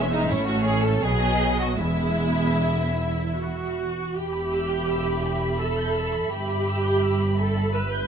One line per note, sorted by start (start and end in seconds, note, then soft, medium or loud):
0.00 0.28 E1 medium
0.00 0.28 E2 medium
0.00 0.28 G#3 medium
0.00 0.28 B3 medium
0.00 0.29 E5 medium
0.12 0.29 D#4 medium
0.28 1.03 A1 medium
0.28 1.03 A2 medium
0.28 1.02 A3 medium
0.28 1.01 C#4 medium
0.28 0.47 E4 medium
0.28 1.03 C#5 medium
0.47 0.65 F#4 medium
0.64 0.83 G#4 medium
0.83 1.02 A4 medium
1.02 1.79 B1 medium
1.02 1.79 B2 medium
1.02 1.79 F#3 medium
1.02 1.79 B3 medium
1.02 1.60 G#4 loud
1.02 1.81 D#5 medium
1.59 1.80 F#4 medium
1.79 3.94 E1 medium
1.79 3.94 E2 medium
1.79 2.99 G#3 medium
1.79 2.96 B3 medium
1.79 3.76 E4 medium
1.79 3.73 E5 medium
2.98 3.35 E4 medium
3.38 4.15 F#4 medium
4.15 6.27 E1 medium
4.15 6.27 E2 medium
4.15 5.60 G4 medium
4.15 8.07 E5 soft
4.15 4.32 G5 soft
4.15 8.07 B5 medium
4.33 4.52 B5 soft
4.52 4.71 E6 soft
4.71 4.89 G6 soft
4.88 5.07 E6 soft
5.07 5.25 B5 soft
5.25 5.42 G5 soft
5.42 5.60 B5 soft
5.59 6.31 A4 medium
5.59 5.78 E6 soft
5.78 5.95 G6 soft
5.95 6.13 E6 medium
6.13 6.31 B5 soft
6.30 8.07 G1 medium
6.30 8.07 G2 medium
6.30 7.38 G4 medium
6.30 6.48 G5 soft
6.50 6.67 B5 soft
6.68 6.85 E6 soft
6.85 7.03 G6 soft
7.03 7.21 E6 medium
7.21 7.39 B5 soft
7.39 7.74 A4 medium
7.39 7.57 G5 medium
7.57 7.74 B5 soft
7.74 8.07 B4 medium
7.74 7.92 E6 medium
7.93 8.07 G6 medium